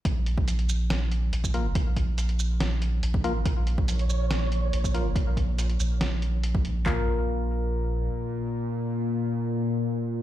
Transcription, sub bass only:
X:1
M:4/4
L:1/8
Q:1/4=141
K:Bbm
V:1 name="Sub bass" clef=bass
B,,,6 B,,,2 | B,,,6 B,,,2 | B,,,6 B,,,2 | B,,,3 B,,,4 B,,, |
B,,,6 z2 | z8 |]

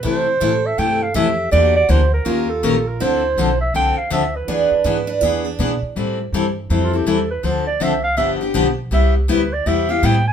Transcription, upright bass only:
X:1
M:4/4
L:1/8
Q:"Swing" 1/4=162
K:Am
V:1 name="Upright bass" clef=bass
C,2 A,,2 G,,2 F,,2 | E,,2 D,,2 ^D,,2 ^A,,,2 | D,,2 B,,,2 C,, z D,,2 | E,, z ^G,,2 E,,2 B,, z |
A,,2 G,,2 F,,2 E,,2 | D,,2 C,,2 G,,,2 B,,,2 | C,,2 D,,2 E,,2 A,,2 |]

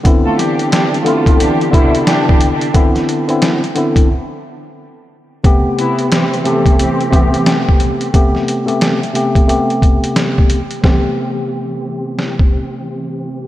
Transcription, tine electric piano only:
X:1
M:4/4
L:1/16
Q:"Swing 16ths" 1/4=89
K:Am
V:1 name="Tine electric piano"
[D,B,CE]6 [D,B,CE]4 [C,D,B,E]6 | [D,B,CE]3 [D,B,CE]2 z [D,B,CE]2 z8 | [C,A,B,G]6 [C,A,B,G]4 [C,A,B,G]6 | [C,A,B,G]3 [C,A,B,G]2 z [C,A,B,G]2 [C,A,B,G]6 z2 |
[C,A,B,G]16 |]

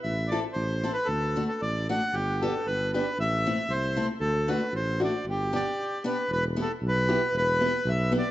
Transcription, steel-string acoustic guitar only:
X:1
M:2/4
L:1/8
Q:"Swing" 1/4=115
K:G
V:1 name="Steel-string acoustic guitar"
z [CEA] z [CEA] | z [A,DF] z [A,DF] | z [B,DG] z [B,DG] | z [A,CE] z [A,CE] |
z [A,DF] z [A,DF] | z [B,DG] z [B,DG] | [K:Em] z [B,EG] z [B,EG] | z [B,EG] z [B,EG] |]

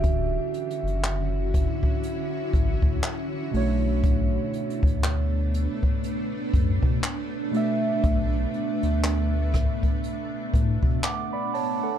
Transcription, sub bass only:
X:1
M:4/4
L:1/16
Q:"Swing 16ths" 1/4=60
K:Bm
V:1 name="Sub bass" clef=bass
D,,,2 z F,,,4 z3 A,,, D,, z2 B,,,2- | B,,,2 z D,,4 z3 F,, B,, z4 | B,,,2 z D,,4 z3 A,, B,, z4 |]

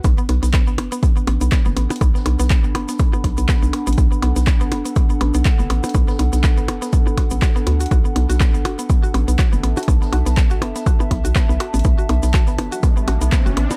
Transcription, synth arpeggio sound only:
X:1
M:4/4
L:1/16
Q:"Swing 16ths" 1/4=122
K:Bm
V:1 name="Synth arpeggio sound"
B, B, B, B, B, B, B, B, B, B, B, B, B, B, B, B, | B, B, B, B, B, B, B, B, B, B, B, B, B, B, B, B, | B, B, B, B, B, B, B, B, B, B, B, B, B, B, B, B, | B, B, B, B, B, B, B, B, B, B, F B, F B, B, F |
F B, B, F B, B, F B, B, F B, B, F B, B, F | B, B, F B, B, F B, B, F B, B, F B, B, F B, | B, F B, B, F B, B, F B, B, F B, B, F B, B, |]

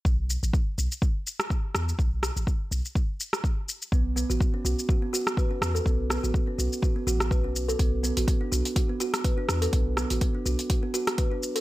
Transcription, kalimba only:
X:1
M:4/4
L:1/16
Q:"Swing 16ths" 1/4=124
K:Bm
V:1 name="Kalimba"
z16 | z16 | B, z B, F z C F z F B, F z B C z A | B, z B, F z C F z F B, F z B C z A |
B, z B, F B, D F z F B, F z B D z A | B, z B, F B, D F z F B, F z B D z A |]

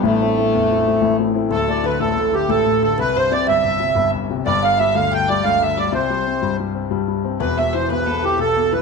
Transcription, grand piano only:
X:1
M:9/8
L:1/8
Q:3/8=122
K:Am
V:1 name="Grand piano" clef=bass
[A,,,A,,] [A,CE] [A,CE] E,, [A,CE] [A,CE] [A,,,A,,] [A,CE] [A,CE] | [K:Ddor] [D,,,D,,] A,, D, [A,,,A,,] A,, D, [A,,,A,,] A,, D, | C,, G,, C, [G,,,G,,] G,, C, [G,,,G,,] G,, C, | [G,,,G,,] D, G, [D,,D,] D, G, [D,,D,] D, G, |
[C,,C,] G, C [G,,G,] G, C [G,,G,] G, C | [E,,,E,,] B,, E, [B,,,B,,] B,, E, [B,,,B,,] B,, E, |]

